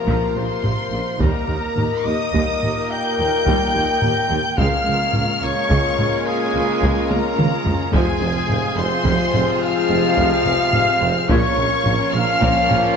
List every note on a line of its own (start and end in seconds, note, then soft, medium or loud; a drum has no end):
0.00 1.16 C3 medium
0.00 1.15 F3 medium
0.00 1.15 A#3 medium
0.00 1.16 A#3 medium
0.00 1.15 F4 medium
0.00 0.36 A#4 medium
0.00 0.37 A#4 medium
0.00 1.15 A#4 medium
0.00 1.16 A#4 medium
0.00 1.17 A#4 medium
0.00 1.16 F5 medium
0.00 0.35 A#5 medium
0.06 0.14 A#1 medium
0.06 0.18 A#1 medium
0.06 0.15 A#2 medium
0.06 0.34 F3 medium
0.06 taiko medium
0.34 0.42 A#1 medium
0.34 0.46 A#1 medium
0.34 0.44 A#2 medium
0.34 0.44 C#3 medium
0.34 0.92 C5 medium
0.34 1.18 C5 medium
0.34 1.20 C6 loud
0.63 0.71 A#1 medium
0.63 0.75 A#1 medium
0.63 0.71 A#2 medium
0.63 0.72 C3 medium
0.63 taiko low-mid medium
0.90 0.98 A#1 medium
0.90 1.02 A#1 medium
0.90 1.00 A#2 medium
0.90 1.01 C#3 medium
1.18 1.30 D#2 medium
1.18 1.27 D#2 medium
1.18 1.29 D#2 medium
1.18 4.38 A#2 medium
1.18 1.47 G3 medium
1.18 4.41 A#3 medium
1.18 4.42 A#3 medium
1.18 4.54 A#3 medium
1.18 4.38 A#3 medium
1.18 4.58 D#4 medium
1.18 4.42 G4 medium
1.18 4.42 A#4 medium
1.18 4.41 A#4 medium
1.18 2.06 A#4 medium
1.18 4.54 A#4 medium
1.18 2.02 A#4 medium
1.18 4.42 D#5 medium
1.18 2.06 A#5 loud
1.18 taiko loud
1.47 1.55 D#2 medium
1.47 1.59 D#2 medium
1.47 1.56 D#2 medium
1.47 1.58 D#3 medium
1.76 1.88 D#2 medium
1.76 1.84 D#2 medium
1.76 1.85 D#2 medium
1.76 1.86 D#3 medium
1.76 taiko low-mid medium
2.05 2.13 D#2 medium
2.05 2.17 D#2 medium
2.05 2.14 D#2 medium
2.05 2.15 D#3 medium
2.05 2.92 D#5 medium
2.05 2.90 D#5 loud
2.05 2.90 D#6 loud
2.32 2.40 D#2 medium
2.32 2.45 D#2 medium
2.32 2.43 D#2 loud
2.32 2.61 G3 medium
2.32 taiko medium
2.61 2.73 D#2 medium
2.61 2.70 D#2 medium
2.61 2.72 D#3 medium
2.61 taiko low-mid soft
2.91 4.61 G5 loud
2.91 4.58 G5 loud
2.91 4.55 G6 loud
3.19 3.30 D#2 medium
3.19 3.27 D#2 medium
3.19 3.28 D#3 medium
3.46 3.57 D#2 loud
3.46 3.54 D#2 loud
3.46 3.54 D#2 medium
3.46 3.73 G3 medium
3.46 taiko medium
3.73 3.85 D#2 medium
3.73 3.82 D#2 medium
3.73 3.83 D#2 medium
3.73 3.83 D#3 medium
4.02 4.13 D#2 medium
4.02 4.10 D#2 medium
4.02 4.11 D#2 medium
4.02 4.11 D#3 medium
4.02 taiko low-mid medium
4.29 4.37 D#2 medium
4.29 4.42 D#2 medium
4.29 4.39 D#2 medium
4.29 4.39 D#3 medium
4.55 4.65 C#2 medium
4.55 4.67 C#2 medium
4.55 4.70 C#2 medium
4.55 7.88 C#3 loud
4.55 7.89 G#3 loud
4.55 4.84 G#3 medium
4.55 7.90 A#3 medium
4.55 7.90 C#4 medium
4.55 7.89 F4 medium
4.55 7.90 F4 loud
4.55 7.94 G#4 medium
4.55 7.89 A#4 medium
4.55 5.24 F5 loud
4.55 5.44 F5 loud
4.55 taiko loud
4.59 7.95 C#5 medium
4.59 7.92 F5 medium
4.59 5.41 F6 loud
4.85 4.93 C#2 medium
4.85 4.98 C#2 medium
4.85 4.95 C#2 medium
4.85 4.94 F3 medium
5.13 5.21 C#2 medium
5.13 5.22 C#2 medium
5.13 5.27 C#2 medium
5.13 5.22 C#3 medium
5.13 taiko low-mid medium
5.41 5.49 C#2 medium
5.41 5.51 C#2 medium
5.41 5.54 C#2 medium
5.41 5.51 F3 medium
5.41 6.24 C#5 loud
5.41 6.27 C#5 loud
5.41 6.27 C#6 loud
5.69 5.77 C#2 loud
5.69 5.78 C#2 loud
5.69 5.82 C#2 loud
5.69 5.96 G#3 medium
5.69 taiko medium
5.97 6.06 C#2 medium
5.97 6.09 C#2 medium
5.97 6.07 C#2 medium
5.97 6.05 F3 medium
5.97 taiko low-mid medium
6.26 7.07 G#4 loud
6.26 7.10 G#4 medium
6.26 7.09 G#5 loud
6.53 6.61 C#2 medium
6.53 6.65 C#2 medium
6.53 6.62 C#2 medium
6.53 6.61 F3 medium
6.82 6.90 C#2 loud
6.82 6.93 C#2 loud
6.82 7.08 G#3 medium
6.82 taiko medium
7.08 7.21 C#2 medium
7.08 7.18 C#2 medium
7.08 7.19 C#2 medium
7.08 7.17 F3 medium
7.08 7.64 A#4 medium
7.08 7.94 A#4 medium
7.08 7.94 A#5 loud
7.08 taiko high medium
7.37 7.48 C#2 medium
7.37 7.45 C#2 medium
7.37 7.46 C#2 medium
7.37 7.46 C#3 medium
7.37 taiko mid loud
7.65 7.73 C#2 medium
7.65 7.76 C#2 medium
7.65 7.73 C#2 medium
7.65 7.73 F3 medium
7.65 taiko low medium
7.91 8.03 F1 loud
7.91 8.01 F1 loud
7.91 8.73 F2 loud
7.91 8.00 F2 loud
7.91 11.25 C3 loud
7.91 11.26 F3 loud
7.91 8.20 F3 loud
7.91 11.30 G#3 loud
7.91 11.27 G#3 medium
7.91 11.26 C4 medium
7.91 11.25 F4 medium
7.91 11.28 F4 medium
7.91 11.26 F4 loud
7.91 11.25 G#4 medium
7.91 8.75 G#4 loud
7.91 8.78 G#4 loud
7.91 11.30 C5 loud
7.91 11.26 F5 loud
7.91 8.76 G#5 loud
7.91 taiko loud
8.20 8.32 F1 medium
8.20 8.30 F1 medium
8.20 8.29 F2 medium
8.20 8.30 C3 medium
8.49 8.60 F1 medium
8.49 8.58 F1 medium
8.49 8.57 F2 medium
8.49 8.58 C3 medium
8.49 taiko low-mid medium
8.76 8.85 F1 medium
8.76 8.88 F1 medium
8.76 8.85 F2 medium
8.76 8.86 C3 medium
8.76 9.63 C5 loud
8.76 9.62 C5 loud
8.76 9.62 C6 loud
9.04 9.13 F1 loud
9.04 9.17 F1 loud
9.04 9.12 F2 loud
9.04 9.32 F3 medium
9.04 taiko medium
9.33 9.44 F1 medium
9.33 9.42 F1 medium
9.33 9.41 F2 medium
9.33 9.42 C3 medium
9.33 taiko low-mid medium
9.61 11.26 F5 loud
9.61 11.30 F5 loud
9.61 11.29 F6 loud
9.89 10.00 F1 medium
9.89 9.98 F1 medium
9.89 9.97 F2 medium
9.89 9.99 C3 medium
10.16 10.28 F1 loud
10.16 10.26 F1 loud
10.16 10.26 F2 loud
10.16 10.44 F3 medium
10.16 taiko medium
10.44 10.53 F1 medium
10.44 10.57 F1 medium
10.44 10.52 F2 medium
10.44 10.53 C3 medium
10.72 10.84 F1 medium
10.72 10.81 F1 medium
10.72 10.80 F2 medium
10.72 10.81 C3 medium
10.72 taiko low-mid medium
11.01 11.09 F1 medium
11.01 11.13 F1 medium
11.01 11.10 F2 medium
11.01 11.09 C3 loud
11.28 11.37 A#1 loud
11.28 11.41 A#1 loud
11.28 12.96 A#2 loud
11.28 11.37 A#2 loud
11.28 12.96 F3 loud
11.28 11.56 F3 loud
11.28 12.96 A#3 loud
11.28 12.96 C#4 medium
11.28 12.96 C#4 loud
11.28 12.96 F4 medium
11.28 12.96 A#4 medium
11.28 12.12 C#5 loud
11.28 12.96 C#5 loud
11.28 12.15 C#5 loud
11.28 12.96 F5 loud
11.28 12.13 C#6 loud
11.28 taiko loud
11.56 11.64 A#1 medium
11.56 11.68 A#1 medium
11.56 11.65 A#2 medium
11.56 11.66 C#3 medium
11.84 11.96 A#1 medium
11.84 11.93 A#1 medium
11.84 11.94 A#2 medium
11.84 11.94 C3 medium
11.84 taiko low-mid medium
12.12 12.24 A#1 medium
12.12 12.22 A#1 medium
12.12 12.22 A#2 medium
12.12 12.23 C#3 medium
12.12 12.96 F5 loud
12.12 12.96 F6 loud
12.40 12.52 A#1 medium
12.40 12.49 A#1 loud
12.40 12.51 A#2 loud
12.40 12.69 F3 medium
12.40 taiko medium
12.70 12.78 A#1 medium
12.70 12.82 A#1 medium
12.70 12.80 A#2 medium
12.70 12.78 C#3 medium
12.70 taiko low-mid medium